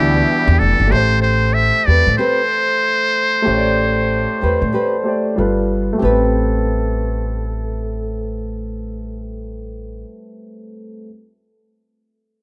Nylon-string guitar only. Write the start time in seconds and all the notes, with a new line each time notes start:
1.88 C4 G4 B4
2.18 C4 G4 B4
4.41 C4 G4 B4
4.73 C4 G4 B4
5.99 C4 G4
6.05 B4